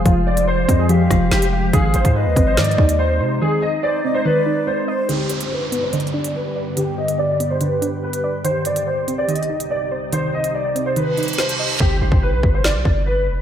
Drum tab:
HH |x-----------------x-----------------x-----------x-----------x-----------------x-----------------|x-----------x-----x-----------------x-----------x---x---x---------x-----------------------------|------------------------------------------------------------------------------------------------|x-----------x-----x-----------------x-----------x---x---x---------x-----------------------------|
SD |------------------------------------------------------------r-----------o-----------------------|------------------------------------------------o-----------------------------------------------|------------------------------------------------------------------------------------------------|------------------------------------------------------------------------------------------------|
BD |o-----------------------------------o-----------------------o-----------------------------------|o-----------------o-----------------o-----------------------o-----------------------------------|------------------------------------------------------------------------------------------------|------------------------------------------------------------------------------------------------|

HH |x-----------------x-----------------x-----------x-----------x-----------------x-----------------|x-----------x-----x-----------------x-----------x---x---x---------x-----------------------------|x-----------------x-----------------x-----------x-----------x--x--x--x--------x-----------------|------------------------------------------------------------------------------------------------|
SD |------------------------------------------------------------------------------------------------|------------------------------------------------------------------------------------------------|------------------------------------------------------------------------o-----------------------|------------------------------------------------o-----------------------------------------------|
BD |------------------------------------------------------------------------------------------------|------------------------------------------------------------------------------------------------|------------------------------------------------------------------------------------------------|o-----------------o-----------------o-----------------------o-----------------------------------|